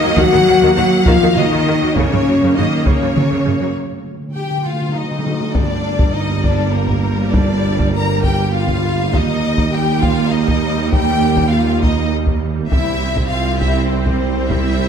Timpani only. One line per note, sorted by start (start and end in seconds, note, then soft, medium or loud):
3.76 3.82 D3 soft
3.83 3.90 D3 soft
3.92 3.98 D3 soft
3.99 4.05 D3 soft
4.06 4.12 D3 soft
4.13 4.20 D3 soft
4.22 4.27 D3 soft
4.28 4.35 D3 soft
4.36 4.43 D3 soft
4.44 4.49 D3 soft
4.51 4.56 D3 soft
4.58 4.65 D3 medium
4.66 4.72 D3 medium
4.73 4.80 D3 medium
4.81 4.88 D3 medium
4.89 4.94 D3 medium
4.95 5.02 D3 medium
5.03 5.10 D3 medium
5.11 5.18 D3 medium
5.19 5.25 D3 medium
5.26 5.33 D3 medium
5.34 5.40 D3 medium
5.41 5.48 D3 medium